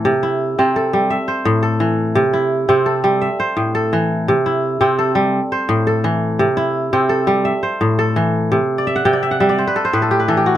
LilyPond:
<<
  \new Staff \with { instrumentName = "Kora" } { \time 12/8 \key c \lydian \tempo 4. = 113 r8 e'4 c'8 a'4 e''8 c''4 a'4. | r8 e'4 c'8 a'4 e''8 c''4 a'4. | r8 e'4 c'8 a'4. c''4 a'4. | r8 e'4 c'8 a'4 e''8 c''4 a'4. |
r8. d''16 e''16 fis''16 g''16 d''16 e''16 fis''16 e''16 d''16 c''16 b'16 a'16 c''16 b'16 a'16 g'16 b'16 a'16 g'16 fis'8 | }
  \new Staff \with { instrumentName = "Kora" } { \clef bass \time 12/8 \key c \lydian c4 r8 c4 g8 r4 a,4 e4 | c4 r8 c4 g8 r4 a,4 e4 | c4 r8 c4 g8 r4 a,4 e4 | c4 r8 c4 g8 r4 a,4 e4 |
c4 r8 c4 g8 r4 a,4 e4 | }
>>